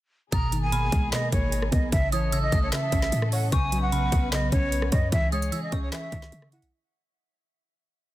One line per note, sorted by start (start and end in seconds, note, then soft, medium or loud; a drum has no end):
0.32 0.90 G#1 loud
0.32 1.91 B2 medium
0.32 0.71 B2 medium
0.32 1.91 D#3 medium
0.32 1.91 A#3 medium
0.32 1.91 G#4 medium
0.32 0.61 A#5 loud
0.32 0.70 D#6 medium
0.32 kick loud
0.32 closed hi-hat medium
0.52 1.52 D#3 medium
0.52 closed hi-hat medium
0.63 1.09 G#5 medium
0.72 1.11 B2 medium
0.72 1.88 B5 medium
0.72 closed hi-hat medium
0.92 1.12 B1 loud
0.92 1.92 G#3 loud
0.92 kick loud
0.92 closed hi-hat medium
1.12 1.92 B2 medium
1.12 1.31 D#5 loud
1.12 snare loud
1.12 clap medium
1.12 closed hi-hat medium
1.32 1.71 G#1 loud
1.32 1.92 A#3 medium
1.32 1.70 C#5 medium
1.32 kick medium
1.32 closed hi-hat medium
1.52 closed hi-hat medium
1.62 cross-stick medium
1.72 1.92 B1 loud
1.72 1.92 B3 medium
1.72 1.91 D#5 medium
1.72 kick loud
1.72 closed hi-hat medium
1.92 2.50 A1 loud
1.92 2.31 C#3 medium
1.92 3.51 E3 medium
1.92 3.51 A3 medium
1.92 6.68 C#4 medium
1.92 3.51 A4 medium
1.92 2.11 E5 loud
1.92 kick loud
1.92 closed hi-hat medium
2.12 3.13 E3 medium
2.12 2.41 C#5 medium
2.12 2.31 D#6 medium
2.12 closed hi-hat medium
2.32 2.71 C#3 medium
2.32 2.51 E6 medium
2.32 closed hi-hat medium
2.43 2.61 D#5 medium
2.52 2.72 A1 loud
2.52 3.52 A3 loud
2.52 3.09 D#6 medium
2.52 kick loud
2.52 closed hi-hat medium
2.63 2.72 C#5 medium
2.72 3.51 C#3 medium
2.72 3.29 E5 loud
2.72 snare loud
2.72 clap medium
2.72 closed hi-hat medium
2.92 3.12 A1 loud
2.92 3.52 C#4 medium
2.92 kick medium
2.92 closed hi-hat medium
3.02 snare medium
3.12 3.51 A2 loud
3.12 closed hi-hat medium
3.22 cross-stick medium
3.32 3.53 C#5 medium
3.32 3.51 F#5 medium
3.32 open hi-hat medium
3.52 4.10 B1 loud
3.52 3.91 C#3 medium
3.52 5.11 F#3 medium
3.52 5.11 B3 medium
3.52 5.11 B4 medium
3.52 3.81 G#5 loud
3.52 3.90 C#6 loud
3.52 kick loud
3.52 closed hi-hat medium
3.72 4.72 F#3 medium
3.72 closed hi-hat medium
3.82 4.29 F#5 medium
3.92 4.31 C#3 medium
3.92 5.08 B5 medium
3.92 closed hi-hat medium
4.12 4.51 B1 loud
4.12 5.13 B3 loud
4.12 kick loud
4.12 closed hi-hat medium
4.32 5.12 C#3 medium
4.32 4.51 D#5 medium
4.32 snare loud
4.32 clap medium
4.32 closed hi-hat medium
4.52 4.91 B1 loud
4.52 5.12 C#4 medium
4.52 4.90 C#5 medium
4.52 kick medium
4.52 closed hi-hat medium
4.72 closed hi-hat medium
4.82 cross-stick medium
4.92 5.12 F#2 loud
4.92 5.12 C#5 medium
4.92 5.11 D#5 medium
4.92 kick loud
4.92 closed hi-hat medium
5.12 5.51 C#2 loud
5.12 6.71 C#3 medium
5.12 5.51 E3 medium
5.12 6.71 G#4 medium
5.12 5.31 E5 loud
5.12 kick loud
5.12 closed hi-hat medium
5.32 6.33 G#3 medium
5.32 5.61 C#5 medium
5.32 5.51 D#6 medium
5.32 closed hi-hat soft
5.42 closed hi-hat medium
5.52 5.91 E3 medium
5.52 5.71 E6 medium
5.52 closed hi-hat medium
5.63 5.81 D#5 medium
5.72 5.92 C#2 loud
5.72 6.72 C#4 loud
5.72 6.68 C#6 medium
5.72 kick loud
5.72 closed hi-hat medium
5.82 5.91 C#5 medium
5.92 6.72 E3 medium
5.92 6.49 E5 medium
5.92 snare loud
5.92 clap medium
5.92 closed hi-hat medium
6.12 6.32 C#2 loud
6.12 6.72 D#3 medium
6.12 kick medium
6.12 closed hi-hat medium
6.22 snare medium
6.32 6.64 C#3 loud
6.32 closed hi-hat medium
6.42 cross-stick medium
6.52 6.73 E4 medium
6.52 6.71 F#5 medium
6.52 closed hi-hat medium
6.52 open hi-hat medium
6.62 6.72 B1 loud
6.62 closed hi-hat medium